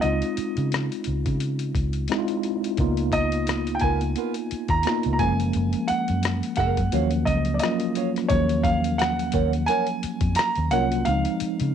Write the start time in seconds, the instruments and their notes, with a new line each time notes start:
0.01 fingered electric bass C#2, tine electric piano G#3 C4 D#4 F4, grand piano D#5, closed hi-hat
0.22 closed hi-hat
0.37 muted fingered electric bass stroke, closed hi-hat
0.57 fingered electric bass C#3, closed hi-hat
0.72 cross-stick, closed hi-hat
0.92 closed hi-hat
1.04 fingered electric bass C#2, closed hi-hat
1.26 fingered electric bass C#3, kick, closed hi-hat
1.40 closed hi-hat
1.59 closed hi-hat
1.75 fingered electric bass C#2, kick, closed hi-hat
1.93 closed hi-hat
2.08 tine electric piano G#3 C4 D#4, closed hi-hat
2.12 tine electric piano E4, cross-stick
2.18 tine electric piano F4
2.28 closed hi-hat
2.43 closed hi-hat
2.64 closed hi-hat
2.77 fingered electric bass C#2, tine electric piano A#3 B3 D#4 F4, kick, closed hi-hat
2.97 closed hi-hat
3.12 grand piano D#5, kick, closed hi-hat
3.32 closed hi-hat
3.47 muted nylon-string guitar stroke, cross-stick, closed hi-hat
3.67 closed hi-hat
3.75 grand piano G5
3.80 fingered electric bass C#2, nylon-string guitar B3 F4, grand piano G#5, kick, closed hi-hat
3.84 nylon-string guitar A#4
4.01 closed hi-hat
4.16 nylon-string guitar B3 F4 A#4, closed hi-hat
4.34 closed hi-hat
4.51 muted fingered electric bass stroke, closed hi-hat
4.68 fingered electric bass D#2, grand piano A#5, kick, closed hi-hat
4.83 tine electric piano A#3 B3 D#4, closed hi-hat
4.87 tine electric piano F4, cross-stick
5.03 fingered electric bass C#2, closed hi-hat
5.13 grand piano A#5
5.19 fingered electric bass F#1, tine electric piano F3 G#3 A#3 C#4, nylon-string guitar G#4 A#4 F5, grand piano G#5, kick, closed hi-hat
5.40 closed hi-hat
5.53 fingered electric bass F#1, closed hi-hat
5.73 closed hi-hat
5.88 grand piano F#5, muted fingered electric bass stroke, closed hi-hat
6.08 fingered electric bass F#2, closed hi-hat
6.23 muted nylon-string guitar stroke, cross-stick, closed hi-hat
6.43 closed hi-hat
6.56 fingered electric bass F#1, nylon-string guitar G#4 A#4 F5, grand piano F#5, kick, closed hi-hat
6.60 cross-stick
6.77 fingered electric bass F#2, kick, closed hi-hat
6.92 fingered electric bass D#2, tine electric piano F3 F#3 A#3 C#4, nylon-string guitar F#4 C#5 F5, closed hi-hat
7.11 closed hi-hat
7.25 fingered electric bass C#2, grand piano D#5, kick, closed hi-hat
7.45 closed hi-hat
7.54 grand piano D5
7.59 tine electric piano F#3 A#3 C#4, grand piano D#5, closed hi-hat
7.63 tine electric piano F4, cross-stick
7.80 closed hi-hat
7.95 nylon-string guitar F#4 C#5 F5, closed hi-hat
8.16 cross-stick, closed hi-hat
8.29 fingered electric bass D#2, tine electric piano F#3 A#3 C#4, grand piano C#5, kick, closed hi-hat
8.33 tine electric piano F3
8.49 closed hi-hat
8.63 grand piano F5, kick, closed hi-hat
8.84 closed hi-hat
8.98 grand piano F#5, muted nylon-string guitar stroke, cross-stick, closed hi-hat
9.19 closed hi-hat
9.32 fingered electric bass D#2, nylon-string guitar A#4 C#5 F#5, kick, closed hi-hat
9.53 closed hi-hat
9.66 nylon-string guitar A#4 C#5 F#5, grand piano G#5, closed hi-hat
9.87 closed hi-hat
10.03 muted fingered electric bass stroke, closed hi-hat
10.21 fingered electric bass F2, kick, closed hi-hat
10.35 grand piano A#5, closed hi-hat
10.39 cross-stick
10.55 fingered electric bass D#2, closed hi-hat
10.71 fingered electric bass C2, tine electric piano F#3 A#3 C#4 F4, nylon-string guitar A#4 C#5 F#5, grand piano F#5, closed hi-hat
10.92 closed hi-hat
11.05 fingered electric bass C#2, tine electric piano E3 G#3 C4 D#4, grand piano F5, closed hi-hat
11.13 tine electric piano F3
11.25 closed hi-hat
11.40 muted fingered electric bass stroke, closed hi-hat
11.60 fingered electric bass C#3, closed hi-hat